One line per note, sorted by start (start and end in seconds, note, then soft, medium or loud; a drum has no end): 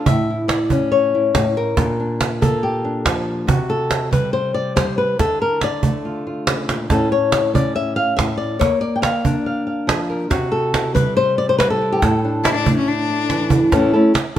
0.06 1.33 A2 medium
0.06 0.48 E5 loud
0.06 cajon bass medium
0.30 1.14 E4 soft
0.48 0.91 D5 medium
0.48 cajon slap loud
0.70 1.75 C#4 medium
0.70 cajon bass medium
0.92 1.77 C#5 loud
0.92 cajon slap soft
1.15 1.76 E4 soft
1.34 1.77 A2 medium
1.34 cajon bass medium
1.34 cajon slap loud
1.57 2.63 A#4 medium
1.57 cajon slap soft
1.77 3.46 A#2 medium
1.77 1.99 D4 soft
1.77 cajon bass loud
1.77 cajon slap soft
2.00 2.84 D4 soft
2.21 cajon slap loud
2.41 3.46 A#3 medium
2.41 3.06 A4 medium
2.41 cajon bass medium
2.63 3.48 G4 medium
2.63 cajon slap soft
2.85 3.50 D4 soft
3.05 3.45 F3 medium
3.05 cajon bass medium
3.05 cajon slap loud
3.47 5.16 C3 medium
3.47 4.12 F#4 medium
3.47 cajon bass medium
3.70 4.12 A4 medium
3.91 cajon slap medium
4.11 4.75 G3 medium
4.11 4.33 B4 medium
4.11 cajon bass medium
4.33 4.54 C5 loud
4.33 cajon slap soft
4.54 4.76 D5 medium
4.76 5.16 G3 medium
4.76 4.97 C5 loud
4.76 cajon bass medium
4.76 cajon slap loud
4.98 5.19 B4 medium
4.98 cajon slap soft
5.19 6.90 D3 medium
5.19 5.41 A4 medium
5.19 cajon bass loud
5.19 cajon slap soft
5.42 5.62 A#4 medium
5.61 6.48 D5 medium
5.61 cajon slap medium
5.83 6.87 A3 medium
5.83 cajon bass medium
6.05 6.25 F4 soft
6.05 cajon slap soft
6.27 6.88 F4 soft
6.47 6.69 C#3 medium
6.47 cajon slap loud
6.69 6.90 A#2 medium
6.69 cajon slap loud
6.90 8.16 A2 medium
6.90 7.52 C#4 soft
6.90 7.11 A4 medium
6.90 cajon bass loud
6.90 cajon slap soft
7.12 7.54 C#5 medium
7.32 cajon slap medium
7.54 8.58 C#4 medium
7.54 7.75 D5 loud
7.54 cajon bass medium
7.76 7.96 E5 loud
7.76 cajon slap soft
7.96 8.16 F5 loud
8.17 8.60 A2 medium
8.17 8.37 E5 loud
8.17 cajon bass medium
8.17 cajon slap loud
8.37 8.60 D5 medium
8.59 10.29 A#3 medium
8.59 8.81 C#5 loud
8.59 cajon bass loud
8.59 cajon slap soft
8.81 9.38 D5 medium
8.96 9.02 G5 medium
9.02 9.45 F5 medium
9.02 cajon slap loud
9.24 10.33 D4 medium
9.24 cajon bass medium
9.46 9.66 F5 soft
9.46 cajon slap soft
9.67 10.28 F5 soft
9.87 10.28 F3 medium
9.87 cajon slap loud
10.10 10.28 A#4 soft
10.10 cajon slap soft
10.30 11.99 C3 medium
10.30 10.95 F#4 loud
10.30 cajon bass loud
10.30 cajon slap soft
10.52 10.94 A4 loud
10.74 11.81 E4 soft
10.74 cajon slap loud
10.94 11.58 G3 medium
10.94 11.16 B4 loud
10.94 cajon bass medium
11.16 11.38 C5 loud
11.16 cajon slap soft
11.38 11.49 D5 loud
11.49 11.58 C5 loud
11.58 11.99 G3 medium
11.58 11.69 B4 loud
11.58 cajon slap loud
11.70 12.01 A4 medium
11.81 12.24 E4 soft
11.81 cajon slap soft
11.92 12.02 G4 medium
12.02 13.70 A2 medium
12.02 13.72 A4 medium
12.02 cajon bass loud
12.02 cajon slap soft
12.25 13.70 D4 soft
12.44 12.54 E4 loud
12.44 13.09 E4 soft
12.44 cajon slap loud
12.55 12.75 D4 medium
12.66 13.70 A3 medium
12.66 cajon bass medium
12.77 12.89 C#4 medium
12.87 13.72 D4 medium
12.87 cajon slap soft
13.10 13.72 E4 soft
13.30 13.70 E3 medium
13.30 cajon slap medium
13.50 cajon bass medium
13.72 13.92 A2 medium
13.72 13.92 E3 medium
13.72 13.93 A3 medium
13.72 13.93 C#4 medium
13.72 13.93 E4 medium
13.72 13.92 A4 medium
13.72 cajon bass loud
13.72 cajon slap soft
13.93 14.13 A3 soft
13.93 14.13 C#4 medium
13.93 14.13 E4 medium
13.93 14.14 A4 medium
14.14 muted nylon-string guitar stroke medium
14.14 cajon slap loud